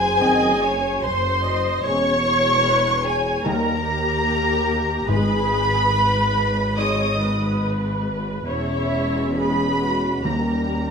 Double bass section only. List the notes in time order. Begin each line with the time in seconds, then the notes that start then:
Already playing: F#1
0.24 F#1
1.04 F#1
1.86 E1
3.45 D#2
5.08 G#1
8.48 E1
10.25 D#2